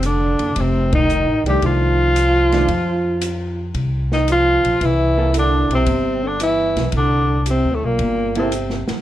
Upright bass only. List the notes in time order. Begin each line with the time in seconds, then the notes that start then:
Already playing: F1
0.40 F#1
0.56 F1
1.27 A1
1.44 C2
1.62 C2
2.68 F2
3.74 C2
4.63 A#1
4.81 C2
5.69 B1
5.87 G1
6.76 B1
6.93 C2
7.64 D2
7.82 B1
7.99 G1
8.89 muted upright bass stroke